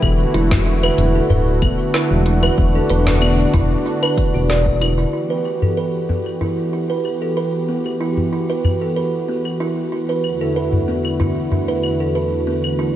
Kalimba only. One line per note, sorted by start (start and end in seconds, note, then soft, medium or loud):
0.02 0.12 B3 medium
0.34 0.51 E4 loud
0.66 0.83 E4 medium
0.83 1.14 B4 loud
1.15 1.30 A4 medium
1.30 1.46 B4 medium
1.62 1.72 B3 medium
1.94 2.10 E4 loud
2.26 2.42 E4 medium
2.43 2.73 B4 loud
2.75 2.89 A4 medium
2.90 3.06 B4 loud
3.22 3.32 B3 medium
3.54 3.70 E4 loud
3.86 4.02 E4 medium
4.03 4.16 B4 loud
4.34 4.49 F#4 medium
4.49 4.66 D5 medium
4.81 4.97 E4 medium
4.98 5.12 E4 medium
5.13 5.29 E4 medium
5.30 5.60 B4 medium
5.62 5.76 A4 medium
5.77 5.93 B4 medium
6.09 6.19 B3 medium
6.41 6.57 E4 medium
6.73 6.89 E4 medium
6.90 7.20 B4 medium
7.22 7.36 A4 medium
7.37 7.53 B4 medium
7.68 7.78 B3 medium
8.00 8.17 E4 medium
8.33 8.49 E4 medium
8.50 8.80 B4 medium
8.81 8.96 A4 medium
8.96 9.12 B4 medium
9.28 9.38 B3 medium
9.60 9.76 E4 medium
9.92 10.08 E4 medium
10.09 10.24 B4 medium
10.41 10.55 A4 medium
10.56 10.72 B4 medium
10.88 10.98 B3 medium
11.20 11.36 E4 medium
11.52 11.68 E4 medium
11.68 11.99 B4 loud
12.00 12.15 A4 medium
12.15 12.31 B4 medium
12.47 12.57 B3 medium
12.79 12.95 E4 medium